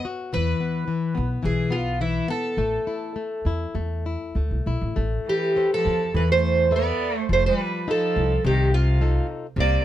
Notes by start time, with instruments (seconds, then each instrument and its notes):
0.05 nylon-string guitar F#4
0.33 upright bass E2, nylon-string guitar E3, twelve-string acoustic guitar B4
0.60 nylon-string guitar B3
0.88 nylon-string guitar E3
1.15 upright bass B1, nylon-string guitar B3
1.43 upright bass B1, nylon-string guitar E3, twelve-string acoustic guitar G#4
1.70 nylon-string guitar B3, twelve-string acoustic guitar F4
2.01 nylon-string guitar E3, twelve-string acoustic guitar E4
2.28 nylon-string guitar B3, twelve-string acoustic guitar A4
2.57 upright bass A1, nylon-string guitar A3
2.87 nylon-string guitar E4
3.16 nylon-string guitar A3
3.45 upright bass E2, nylon-string guitar E4
3.75 upright bass E2, nylon-string guitar A3
4.06 nylon-string guitar E4
4.35 upright bass D2, nylon-string guitar A3
4.51 upright bass C2
4.66 upright bass B1, nylon-string guitar E4
4.81 upright bass A1
4.96 upright bass A1, nylon-string guitar A3
5.27 cello E3, twelve-string acoustic guitar G4
5.56 nylon-string guitar A4 B4 C5
5.73 cello F3, twelve-string acoustic guitar A4
5.85 upright bass E2
6.14 upright bass E2, cello E3, nylon-string guitar E3, twelve-string acoustic guitar B4
6.30 cello A3, twelve-string acoustic guitar C5
6.71 cello B3, nylon-string guitar A4 B4 E5
6.76 twelve-string acoustic guitar D5
7.16 cello A3
7.21 twelve-string acoustic guitar C5
7.29 upright bass F1, nylon-string guitar F3, cello A3, twelve-string acoustic guitar C5
7.46 cello G3, twelve-string acoustic guitar C5
7.57 twelve-string acoustic guitar B4
7.88 cello F3, nylon-string guitar D#4 F4 A4, twelve-string acoustic guitar A4
8.16 upright bass C2
8.45 upright bass C2, nylon-string guitar C3, cello D#3, twelve-string acoustic guitar G4
8.74 cello C3, twelve-string acoustic guitar F4
9.01 nylon-string guitar D#4 F4 A4
9.56 upright bass C2, nylon-string guitar C3, cello A#3
9.60 twelve-string acoustic guitar D5